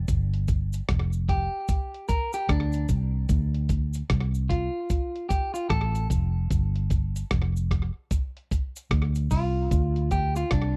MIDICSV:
0, 0, Header, 1, 4, 480
1, 0, Start_track
1, 0, Key_signature, -2, "minor"
1, 0, Tempo, 802461
1, 48, Time_signature, 4, 2, 24, 8
1, 6440, End_track
2, 0, Start_track
2, 0, Title_t, "Clean electric guitar"
2, 0, Program_c, 0, 27
2, 773, Note_on_c, 0, 67, 87
2, 1245, Note_off_c, 0, 67, 0
2, 1248, Note_on_c, 0, 70, 98
2, 1397, Note_off_c, 0, 70, 0
2, 1399, Note_on_c, 0, 67, 90
2, 1490, Note_on_c, 0, 62, 76
2, 1492, Note_off_c, 0, 67, 0
2, 1713, Note_off_c, 0, 62, 0
2, 2689, Note_on_c, 0, 65, 80
2, 3162, Note_off_c, 0, 65, 0
2, 3164, Note_on_c, 0, 67, 87
2, 3310, Note_off_c, 0, 67, 0
2, 3313, Note_on_c, 0, 65, 83
2, 3404, Note_off_c, 0, 65, 0
2, 3407, Note_on_c, 0, 69, 92
2, 3631, Note_off_c, 0, 69, 0
2, 5568, Note_on_c, 0, 65, 91
2, 6047, Note_off_c, 0, 65, 0
2, 6050, Note_on_c, 0, 67, 103
2, 6197, Note_off_c, 0, 67, 0
2, 6200, Note_on_c, 0, 65, 90
2, 6292, Note_off_c, 0, 65, 0
2, 6292, Note_on_c, 0, 62, 76
2, 6440, Note_off_c, 0, 62, 0
2, 6440, End_track
3, 0, Start_track
3, 0, Title_t, "Fingered electric bass"
3, 0, Program_c, 1, 33
3, 53, Note_on_c, 1, 31, 91
3, 479, Note_off_c, 1, 31, 0
3, 536, Note_on_c, 1, 29, 92
3, 880, Note_off_c, 1, 29, 0
3, 1491, Note_on_c, 1, 38, 92
3, 1704, Note_off_c, 1, 38, 0
3, 1732, Note_on_c, 1, 36, 88
3, 1944, Note_off_c, 1, 36, 0
3, 1973, Note_on_c, 1, 38, 105
3, 2399, Note_off_c, 1, 38, 0
3, 2457, Note_on_c, 1, 36, 87
3, 2801, Note_off_c, 1, 36, 0
3, 3413, Note_on_c, 1, 33, 95
3, 3625, Note_off_c, 1, 33, 0
3, 3653, Note_on_c, 1, 29, 86
3, 3865, Note_off_c, 1, 29, 0
3, 3895, Note_on_c, 1, 31, 91
3, 4320, Note_off_c, 1, 31, 0
3, 4378, Note_on_c, 1, 29, 97
3, 4721, Note_off_c, 1, 29, 0
3, 5333, Note_on_c, 1, 38, 93
3, 5546, Note_off_c, 1, 38, 0
3, 5572, Note_on_c, 1, 36, 88
3, 5785, Note_off_c, 1, 36, 0
3, 5814, Note_on_c, 1, 38, 102
3, 6240, Note_off_c, 1, 38, 0
3, 6293, Note_on_c, 1, 36, 88
3, 6440, Note_off_c, 1, 36, 0
3, 6440, End_track
4, 0, Start_track
4, 0, Title_t, "Drums"
4, 49, Note_on_c, 9, 36, 107
4, 49, Note_on_c, 9, 42, 81
4, 49, Note_on_c, 9, 69, 65
4, 109, Note_off_c, 9, 36, 0
4, 109, Note_off_c, 9, 42, 0
4, 109, Note_off_c, 9, 69, 0
4, 200, Note_on_c, 9, 42, 51
4, 260, Note_off_c, 9, 42, 0
4, 287, Note_on_c, 9, 42, 68
4, 287, Note_on_c, 9, 69, 51
4, 290, Note_on_c, 9, 36, 92
4, 347, Note_off_c, 9, 42, 0
4, 347, Note_off_c, 9, 69, 0
4, 349, Note_off_c, 9, 36, 0
4, 436, Note_on_c, 9, 69, 73
4, 442, Note_on_c, 9, 42, 52
4, 496, Note_off_c, 9, 69, 0
4, 502, Note_off_c, 9, 42, 0
4, 530, Note_on_c, 9, 37, 118
4, 531, Note_on_c, 9, 36, 112
4, 531, Note_on_c, 9, 42, 108
4, 590, Note_off_c, 9, 37, 0
4, 591, Note_off_c, 9, 36, 0
4, 591, Note_off_c, 9, 42, 0
4, 675, Note_on_c, 9, 69, 57
4, 735, Note_off_c, 9, 69, 0
4, 769, Note_on_c, 9, 36, 89
4, 773, Note_on_c, 9, 42, 84
4, 829, Note_off_c, 9, 36, 0
4, 832, Note_off_c, 9, 42, 0
4, 1006, Note_on_c, 9, 69, 65
4, 1009, Note_on_c, 9, 36, 105
4, 1009, Note_on_c, 9, 42, 87
4, 1066, Note_off_c, 9, 69, 0
4, 1069, Note_off_c, 9, 36, 0
4, 1069, Note_off_c, 9, 42, 0
4, 1162, Note_on_c, 9, 42, 45
4, 1222, Note_off_c, 9, 42, 0
4, 1247, Note_on_c, 9, 69, 55
4, 1251, Note_on_c, 9, 36, 95
4, 1252, Note_on_c, 9, 42, 75
4, 1307, Note_off_c, 9, 69, 0
4, 1311, Note_off_c, 9, 36, 0
4, 1311, Note_off_c, 9, 42, 0
4, 1394, Note_on_c, 9, 69, 77
4, 1404, Note_on_c, 9, 42, 51
4, 1454, Note_off_c, 9, 69, 0
4, 1464, Note_off_c, 9, 42, 0
4, 1488, Note_on_c, 9, 36, 112
4, 1491, Note_on_c, 9, 37, 113
4, 1491, Note_on_c, 9, 42, 101
4, 1548, Note_off_c, 9, 36, 0
4, 1551, Note_off_c, 9, 37, 0
4, 1551, Note_off_c, 9, 42, 0
4, 1630, Note_on_c, 9, 69, 49
4, 1638, Note_on_c, 9, 42, 59
4, 1690, Note_off_c, 9, 69, 0
4, 1698, Note_off_c, 9, 42, 0
4, 1727, Note_on_c, 9, 69, 75
4, 1728, Note_on_c, 9, 36, 88
4, 1730, Note_on_c, 9, 42, 65
4, 1787, Note_off_c, 9, 69, 0
4, 1788, Note_off_c, 9, 36, 0
4, 1790, Note_off_c, 9, 42, 0
4, 1967, Note_on_c, 9, 42, 79
4, 1969, Note_on_c, 9, 36, 113
4, 1969, Note_on_c, 9, 69, 65
4, 2027, Note_off_c, 9, 42, 0
4, 2029, Note_off_c, 9, 36, 0
4, 2029, Note_off_c, 9, 69, 0
4, 2120, Note_on_c, 9, 42, 52
4, 2180, Note_off_c, 9, 42, 0
4, 2208, Note_on_c, 9, 42, 74
4, 2210, Note_on_c, 9, 36, 97
4, 2210, Note_on_c, 9, 69, 58
4, 2267, Note_off_c, 9, 42, 0
4, 2270, Note_off_c, 9, 36, 0
4, 2270, Note_off_c, 9, 69, 0
4, 2355, Note_on_c, 9, 69, 75
4, 2364, Note_on_c, 9, 42, 56
4, 2415, Note_off_c, 9, 69, 0
4, 2424, Note_off_c, 9, 42, 0
4, 2451, Note_on_c, 9, 37, 115
4, 2452, Note_on_c, 9, 42, 109
4, 2453, Note_on_c, 9, 36, 107
4, 2511, Note_off_c, 9, 37, 0
4, 2511, Note_off_c, 9, 42, 0
4, 2513, Note_off_c, 9, 36, 0
4, 2600, Note_on_c, 9, 69, 57
4, 2659, Note_off_c, 9, 69, 0
4, 2691, Note_on_c, 9, 36, 85
4, 2694, Note_on_c, 9, 42, 84
4, 2751, Note_off_c, 9, 36, 0
4, 2754, Note_off_c, 9, 42, 0
4, 2930, Note_on_c, 9, 69, 65
4, 2931, Note_on_c, 9, 36, 98
4, 2932, Note_on_c, 9, 42, 85
4, 2990, Note_off_c, 9, 69, 0
4, 2991, Note_off_c, 9, 36, 0
4, 2992, Note_off_c, 9, 42, 0
4, 3084, Note_on_c, 9, 42, 45
4, 3144, Note_off_c, 9, 42, 0
4, 3172, Note_on_c, 9, 36, 98
4, 3173, Note_on_c, 9, 42, 77
4, 3173, Note_on_c, 9, 69, 57
4, 3232, Note_off_c, 9, 36, 0
4, 3233, Note_off_c, 9, 42, 0
4, 3233, Note_off_c, 9, 69, 0
4, 3320, Note_on_c, 9, 69, 77
4, 3322, Note_on_c, 9, 42, 54
4, 3380, Note_off_c, 9, 69, 0
4, 3382, Note_off_c, 9, 42, 0
4, 3409, Note_on_c, 9, 36, 113
4, 3411, Note_on_c, 9, 37, 113
4, 3411, Note_on_c, 9, 42, 95
4, 3469, Note_off_c, 9, 36, 0
4, 3470, Note_off_c, 9, 37, 0
4, 3471, Note_off_c, 9, 42, 0
4, 3559, Note_on_c, 9, 42, 61
4, 3560, Note_on_c, 9, 69, 51
4, 3619, Note_off_c, 9, 42, 0
4, 3620, Note_off_c, 9, 69, 0
4, 3650, Note_on_c, 9, 36, 92
4, 3652, Note_on_c, 9, 42, 67
4, 3656, Note_on_c, 9, 69, 77
4, 3709, Note_off_c, 9, 36, 0
4, 3712, Note_off_c, 9, 42, 0
4, 3715, Note_off_c, 9, 69, 0
4, 3891, Note_on_c, 9, 36, 111
4, 3891, Note_on_c, 9, 42, 84
4, 3897, Note_on_c, 9, 69, 63
4, 3951, Note_off_c, 9, 36, 0
4, 3951, Note_off_c, 9, 42, 0
4, 3957, Note_off_c, 9, 69, 0
4, 4041, Note_on_c, 9, 42, 55
4, 4101, Note_off_c, 9, 42, 0
4, 4128, Note_on_c, 9, 42, 73
4, 4131, Note_on_c, 9, 36, 98
4, 4134, Note_on_c, 9, 69, 55
4, 4188, Note_off_c, 9, 42, 0
4, 4191, Note_off_c, 9, 36, 0
4, 4194, Note_off_c, 9, 69, 0
4, 4283, Note_on_c, 9, 42, 52
4, 4284, Note_on_c, 9, 69, 76
4, 4343, Note_off_c, 9, 42, 0
4, 4344, Note_off_c, 9, 69, 0
4, 4372, Note_on_c, 9, 37, 123
4, 4372, Note_on_c, 9, 42, 105
4, 4373, Note_on_c, 9, 36, 109
4, 4431, Note_off_c, 9, 37, 0
4, 4432, Note_off_c, 9, 42, 0
4, 4433, Note_off_c, 9, 36, 0
4, 4526, Note_on_c, 9, 69, 56
4, 4585, Note_off_c, 9, 69, 0
4, 4611, Note_on_c, 9, 36, 88
4, 4613, Note_on_c, 9, 37, 68
4, 4614, Note_on_c, 9, 42, 86
4, 4671, Note_off_c, 9, 36, 0
4, 4673, Note_off_c, 9, 37, 0
4, 4673, Note_off_c, 9, 42, 0
4, 4850, Note_on_c, 9, 42, 93
4, 4851, Note_on_c, 9, 36, 101
4, 4853, Note_on_c, 9, 69, 68
4, 4910, Note_off_c, 9, 42, 0
4, 4911, Note_off_c, 9, 36, 0
4, 4913, Note_off_c, 9, 69, 0
4, 5005, Note_on_c, 9, 42, 45
4, 5065, Note_off_c, 9, 42, 0
4, 5093, Note_on_c, 9, 36, 93
4, 5095, Note_on_c, 9, 42, 76
4, 5095, Note_on_c, 9, 69, 58
4, 5152, Note_off_c, 9, 36, 0
4, 5154, Note_off_c, 9, 42, 0
4, 5155, Note_off_c, 9, 69, 0
4, 5241, Note_on_c, 9, 69, 77
4, 5244, Note_on_c, 9, 42, 51
4, 5301, Note_off_c, 9, 69, 0
4, 5304, Note_off_c, 9, 42, 0
4, 5328, Note_on_c, 9, 36, 108
4, 5330, Note_on_c, 9, 37, 112
4, 5330, Note_on_c, 9, 42, 98
4, 5388, Note_off_c, 9, 36, 0
4, 5389, Note_off_c, 9, 37, 0
4, 5390, Note_off_c, 9, 42, 0
4, 5475, Note_on_c, 9, 69, 52
4, 5478, Note_on_c, 9, 42, 58
4, 5534, Note_off_c, 9, 69, 0
4, 5538, Note_off_c, 9, 42, 0
4, 5568, Note_on_c, 9, 36, 89
4, 5569, Note_on_c, 9, 69, 78
4, 5571, Note_on_c, 9, 46, 65
4, 5628, Note_off_c, 9, 36, 0
4, 5629, Note_off_c, 9, 69, 0
4, 5630, Note_off_c, 9, 46, 0
4, 5810, Note_on_c, 9, 36, 118
4, 5810, Note_on_c, 9, 42, 87
4, 5813, Note_on_c, 9, 69, 66
4, 5870, Note_off_c, 9, 36, 0
4, 5870, Note_off_c, 9, 42, 0
4, 5873, Note_off_c, 9, 69, 0
4, 5958, Note_on_c, 9, 42, 54
4, 6017, Note_off_c, 9, 42, 0
4, 6046, Note_on_c, 9, 42, 70
4, 6049, Note_on_c, 9, 36, 93
4, 6049, Note_on_c, 9, 69, 52
4, 6106, Note_off_c, 9, 42, 0
4, 6109, Note_off_c, 9, 36, 0
4, 6109, Note_off_c, 9, 69, 0
4, 6196, Note_on_c, 9, 69, 75
4, 6199, Note_on_c, 9, 42, 56
4, 6256, Note_off_c, 9, 69, 0
4, 6259, Note_off_c, 9, 42, 0
4, 6285, Note_on_c, 9, 37, 121
4, 6286, Note_on_c, 9, 42, 110
4, 6290, Note_on_c, 9, 36, 110
4, 6345, Note_off_c, 9, 37, 0
4, 6346, Note_off_c, 9, 42, 0
4, 6349, Note_off_c, 9, 36, 0
4, 6440, End_track
0, 0, End_of_file